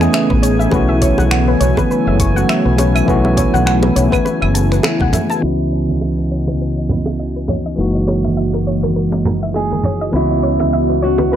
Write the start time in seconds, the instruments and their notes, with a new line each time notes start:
Already playing: analog synth pad C#3 A3 B3 D#4 G#4, tine electric piano C#4 G#4, synth texture G#5
0.00 tine electric piano E3 A3 B3 C#4 G#4, synth pluck G#5, finger snap, shaker
0.13 synth pluck E5, finger snap, high bongo, shaker
0.30 fretless electric bass A1, synth pluck B4, kick, high conga
0.42 synth pluck C#5, closed hi-hat, shaker
0.59 synth pluck E5, shaker
0.70 fretless electric bass B1, tine electric piano E3 A3 B3 C#4, analog synth pad F#3 E4, synth pluck B4, kick, high bongo, shaker
0.75 tine electric piano F#4
0.89 synth pluck E5
1.02 synth pluck C#5, kick, closed hi-hat, shaker
1.18 fretless electric bass B1, synth pluck F#5, high bongo, high conga, shaker
1.31 synth pluck F#5, finger snap, shaker
1.48 synth pluck B4
1.60 fretless electric bass B1, synth pluck C#5, closed hi-hat, shaker
1.77 synth pluck B4, kick, high bongo, high conga, shaker
1.91 synth pluck B4, shaker
2.07 fretless electric bass F#1, synth pluck E5
2.20 synth pluck C#6, kick, closed hi-hat, high bongo, shaker
2.34 tine electric piano E3 A3 B3 C#4, synth pluck F#5, shaker
2.38 tine electric piano F#4
2.49 synth pluck E5, finger snap, shaker
2.65 fretless electric bass B1, synth pluck B4
2.78 synth pluck C#5, closed hi-hat, high bongo, shaker
2.95 synth pluck E5, claves, shaker
3.06 fretless electric bass B1, tine electric piano E3 A3 B3 C#4, synth pluck B4, kick, shaker
3.10 tine electric piano F#4
3.25 synth pluck E5, high bongo
3.37 synth pluck C#5, kick, closed hi-hat, shaker
3.54 fretless electric bass B1, synth pluck F#5, high conga, shaker
3.66 synth pluck F#5, finger snap, shaker
3.83 synth pluck B4, high bongo
3.96 fretless electric bass B1, synth pluck C#5, closed hi-hat, shaker
4.12 synth pluck B4, kick, high conga, claves, shaker
4.25 synth pluck B4, high bongo, shaker
4.42 fretless electric bass F#1, synth pluck E5, claves
4.54 synth pluck A5, closed hi-hat, shaker
4.72 synth pluck B4, finger snap, shaker
4.83 synth pluck E5, finger snap, high bongo, shaker
5.00 fretless electric bass B1, synth pluck F#5, kick, high conga
5.13 synth pluck E5, closed hi-hat, low conga, shaker
5.30 synth pluck A5, high bongo, shaker
5.40 fretless electric bass C#2, analog synth pad C#3 E3 B3 F#4 D#5, tine electric piano E3 B3 C#4 D#5, nylon-string guitar E4, crash, high bongo
5.44 tine electric piano F#4
5.60 synth pluck D#5
5.72 synth pluck C#5
5.89 synth pluck E5, high conga
6.01 synth pluck E5, high bongo
6.18 synth pluck B4
6.31 synth pluck C#5
6.47 synth pluck B4, high bongo, high conga
6.61 synth pluck B4
6.78 synth pluck D#5
6.89 synth pluck B5, low conga
7.06 synth pluck E5, high bongo
7.19 synth pluck D#5
7.36 synth pluck B4
7.48 synth pluck C#5, high bongo, low conga
7.66 synth pluck D#5
7.75 fretless electric bass F#1, tine electric piano E3 G#3 A#3 D#4, analog synth pad G#3 A#3, synth pluck A#4
7.80 tine electric piano F#4
7.95 synth pluck D#5
8.07 synth pluck C#5, high bongo
8.24 synth pluck E5, high conga
8.37 synth pluck E5
8.54 synth pluck A#4, high bongo
8.67 synth pluck C#5
8.83 synth pluck A#4, high conga
8.96 synth pluck A#4
9.12 synth pluck D#5, high bongo
9.25 synth pluck A#5, low conga
9.43 synth pluck E5
9.54 nylon-string guitar G#4, synth pluck D#5, high bongo
9.72 synth pluck A#4, high conga
9.84 synth pluck C#5, low conga
10.01 synth pluck D#5
10.11 fretless electric bass C#2, tine electric piano E3 B3 C#4 D#5, analog synth pad B3 C#4 F#4 D#5, synth pluck B4, high bongo
10.15 nylon-string guitar E4, tine electric piano F#4
10.31 synth pluck D#5
10.43 synth pluck C#5
10.59 synth pluck E5, high bongo, high conga
10.73 synth pluck E5
10.90 synth pluck B4
11.02 nylon-string guitar F#4, synth pluck C#5
11.18 synth pluck B4, high bongo, high conga
11.32 synth pluck B4, nylon-string guitar B4